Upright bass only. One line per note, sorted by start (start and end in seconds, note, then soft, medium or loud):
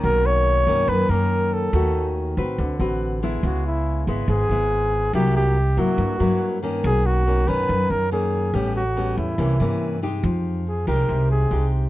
0.04 0.63 B1 loud
0.67 0.87 F#2 medium
0.88 1.08 F#2 loud
1.09 1.69 F#2 medium
1.73 2.33 D#2 loud
2.37 2.57 A2 medium
2.58 2.78 D2 medium
2.79 3.39 A1 medium
3.43 4.03 C#2 loud
4.07 4.27 G#1 medium
4.28 4.48 G#1 medium
4.49 5.09 G#1 medium
5.13 5.73 C2 loud
5.77 5.97 G2 medium
5.98 6.18 G2 loud
6.20 6.80 G2 medium
6.84 7.44 B1 loud
7.48 7.67 F#2 medium
7.69 7.89 F#2 medium
7.90 8.50 F#2 medium
8.54 9.13 A1 medium
9.17 9.37 E2 medium
9.38 9.58 C2 medium
9.60 10.20 G2 medium
10.23 10.83 F2 loud
10.87 11.07 C2 medium
11.09 11.48 C2 medium
11.51 11.89 C2 medium